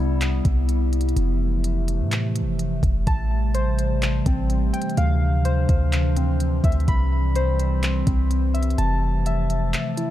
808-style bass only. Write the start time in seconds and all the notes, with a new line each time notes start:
Already playing: C2
0.45 C2
1.16 F1
2.00 A2
2.42 F1
2.83 F1
3.07 A1
4.26 A1
4.97 D2
5.69 D2
6.64 D2
6.88 C2
8.07 C2
8.78 F1